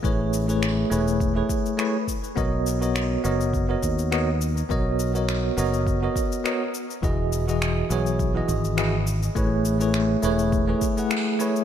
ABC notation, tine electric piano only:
X:1
M:4/4
L:1/16
Q:"Swing 16ths" 1/4=103
K:B
V:1 name="Tine electric piano"
[=A,EGBc]3 [A,EGBc]3 [A,EGBc]3 [A,EGBc]3 [A,EGBc] z3 | [B,FAcd]3 [B,FAcd]3 [B,FAcd]3 [B,FAcd]3 [B,FAcd] z3 | [B,FAcd]3 [B,FAcd]3 [B,FAcd]3 [B,FAcd]3 [B,FAcd] z3 | [E,EFGd]3 [E,EFGd]3 [E,EFGc]3 [E,EFGd]3 [E,EFGd] z3 |
[=A,EGBc]3 [A,EGBc]3 [A,EGBc]3 [A,EGBc]2 [A,EGBf]3 [A,EGBc]2 |]